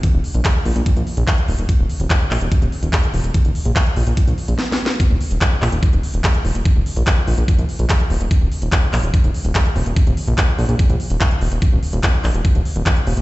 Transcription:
0.03 kick, closed hi-hat
0.14 D#1
0.24 open hi-hat
0.34 A#1, closed hi-hat
0.45 kick, clap, closed hi-hat
0.65 A#1, open hi-hat
0.76 A#1, closed hi-hat
0.86 kick, closed hi-hat
0.96 A#1, closed hi-hat
1.07 open hi-hat
1.17 A#1, closed hi-hat
1.28 kick, clap, closed hi-hat
1.38 closed hi-hat
1.48 D#1, open hi-hat
1.59 D#1, closed hi-hat
1.69 kick, closed hi-hat
1.79 D#1
1.90 open hi-hat
2.00 D#1, closed hi-hat
2.10 kick, clap, closed hi-hat
2.31 A#1, clap, open hi-hat
2.41 D#1, closed hi-hat
2.52 kick, closed hi-hat
2.62 D#1, closed hi-hat
2.72 open hi-hat
2.83 D#1, closed hi-hat
2.93 kick, clap, closed hi-hat
3.03 closed hi-hat
3.14 D#1, open hi-hat
3.24 D#1, closed hi-hat
3.34 kick, closed hi-hat
3.45 D#1, closed hi-hat
3.55 open hi-hat
3.65 A#1, closed hi-hat
3.76 kick, clap, closed hi-hat
3.86 closed hi-hat
3.96 A#1, open hi-hat
4.07 A#1, closed hi-hat
4.17 kick, closed hi-hat
4.28 A#1, closed hi-hat
4.38 open hi-hat
4.48 A#1, closed hi-hat
4.59 snare
4.72 snare
4.86 snare
5.00 kick, closed hi-hat
5.10 D#1
5.21 open hi-hat
5.31 D#1, closed hi-hat
5.41 kick, clap, closed hi-hat
5.62 A#1, clap, open hi-hat
5.72 D#1, closed hi-hat
5.83 kick, closed hi-hat
5.93 D#1, closed hi-hat
6.03 open hi-hat
6.14 D#1, closed hi-hat
6.24 kick, clap, closed hi-hat
6.34 closed hi-hat
6.45 D#1, open hi-hat
6.55 D#1, closed hi-hat
6.65 kick, closed hi-hat
6.76 D#1
6.86 open hi-hat
6.96 A#1, closed hi-hat
7.07 kick, clap, closed hi-hat
7.27 A#1, open hi-hat
7.38 A#1, closed hi-hat
7.48 kick, closed hi-hat
7.59 A#1, closed hi-hat
7.69 open hi-hat
7.79 A#1, closed hi-hat
7.90 kick, clap, closed hi-hat
8.00 closed hi-hat
8.10 D#1, open hi-hat
8.21 D#1, closed hi-hat
8.31 kick, closed hi-hat
8.41 D#1
8.52 open hi-hat
8.62 D#1, closed hi-hat
8.72 kick, clap, closed hi-hat
8.93 A#1, clap, open hi-hat
9.03 D#1, closed hi-hat
9.14 kick, closed hi-hat
9.24 D#1, closed hi-hat
9.34 open hi-hat
9.45 D#1, closed hi-hat
9.55 kick, clap, closed hi-hat
9.65 closed hi-hat
9.76 D#1, open hi-hat
9.86 D#1, closed hi-hat
9.96 kick, closed hi-hat
10.07 D#1, closed hi-hat
10.17 open hi-hat
10.28 A#1, closed hi-hat
10.38 kick, clap, closed hi-hat
10.59 A#1, open hi-hat
10.69 A#1, closed hi-hat
10.79 kick, closed hi-hat
10.90 A#1, closed hi-hat
11.00 open hi-hat
11.10 D#1, closed hi-hat
11.21 kick, clap, closed hi-hat
11.31 closed hi-hat
11.41 D#1, open hi-hat
11.52 D#1, closed hi-hat
11.62 kick, closed hi-hat
11.72 D#1
11.83 open hi-hat
11.93 D#1, closed hi-hat
12.03 kick, clap, closed hi-hat
12.24 A#1, clap, open hi-hat
12.34 D#1, closed hi-hat
12.45 kick, closed hi-hat
12.55 D#1, closed hi-hat
12.65 open hi-hat
12.76 D#1, closed hi-hat
12.86 kick, clap, closed hi-hat
12.96 closed hi-hat
13.07 D#1, open hi-hat
13.17 D#1, closed hi-hat

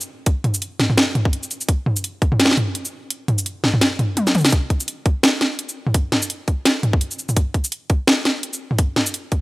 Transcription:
0.01 shaker
0.26 kick, closed hi-hat
0.44 closed hi-hat, mid tom
0.54 shaker
0.62 closed hi-hat
0.80 snare, closed hi-hat, mid tom
0.90 mid tom
0.98 snare, closed hi-hat
1.15 closed hi-hat, mid tom
1.25 kick
1.33 closed hi-hat
1.43 shaker
1.51 closed hi-hat, shaker
1.61 shaker
1.69 kick, closed hi-hat
1.86 mid tom
1.96 shaker
2.04 closed hi-hat
2.22 kick, closed hi-hat
2.32 mid tom
2.40 snare, closed hi-hat
2.45 snare
2.51 snare
2.57 closed hi-hat, mid tom
2.75 closed hi-hat
2.85 shaker
3.10 closed hi-hat
3.28 closed hi-hat, mid tom
3.38 shaker
3.46 closed hi-hat
3.64 snare, mid tom
3.74 mid tom
3.81 snare, closed hi-hat
3.99 closed hi-hat, mid tom
4.17 closed hi-hat, high tom
4.27 snare, shaker
4.35 closed hi-hat, mid tom, shaker
4.38 shaker
4.41 shaker
4.45 snare, shaker
4.47 shaker
4.52 kick, closed hi-hat
4.70 kick, closed hi-hat
4.80 shaker
4.88 closed hi-hat
5.06 kick, closed hi-hat
5.23 snare, closed hi-hat
5.41 snare, closed hi-hat
5.59 closed hi-hat
5.69 shaker
5.87 mid tom
5.94 kick, closed hi-hat
6.12 snare, closed hi-hat, mid tom
6.22 shaker
6.30 closed hi-hat
6.48 kick, closed hi-hat
6.65 snare, closed hi-hat
6.83 closed hi-hat, mid tom
6.93 kick
7.01 closed hi-hat
7.11 shaker
7.19 shaker
7.29 mid tom, shaker
7.37 kick, closed hi-hat
7.54 kick, closed hi-hat
7.64 shaker
7.72 closed hi-hat
7.90 kick, closed hi-hat
8.07 snare, closed hi-hat
8.25 snare, closed hi-hat
8.43 closed hi-hat
8.53 shaker
8.71 mid tom
8.78 kick, closed hi-hat
8.96 snare, closed hi-hat, mid tom
9.06 shaker
9.14 closed hi-hat
9.32 kick, closed hi-hat

